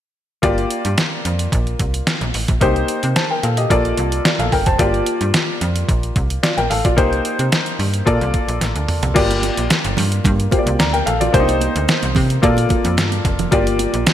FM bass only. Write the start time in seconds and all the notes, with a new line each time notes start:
0.43 G1
0.85 G2
1.25 F2
1.53 A#1
1.80 C2
2.21 A#1
2.34 A1
2.49 A#1
2.61 C2
3.04 C3
3.43 A#2
3.70 A#1
3.98 C2
4.39 A#1
4.52 G1
4.67 F1
4.79 G1
5.21 G2
5.61 F2
5.89 A#1
6.16 C2
6.58 A#1
6.70 A1
6.85 A#1
6.98 C2
7.39 C3
7.79 G2
8.07 A#2
8.21 C2
8.48 A#1
8.61 A1
8.76 D2
9.03 C2
9.16 G1
9.58 A#1
9.85 G1
9.97 G2
10.25 G2
10.66 C2
10.79 D2
11.07 A#1
11.34 C2
11.76 D2
12.03 C2
12.16 C3
12.43 A#2
12.85 F2
12.98 G2
13.25 F1
13.52 G1
13.94 A#1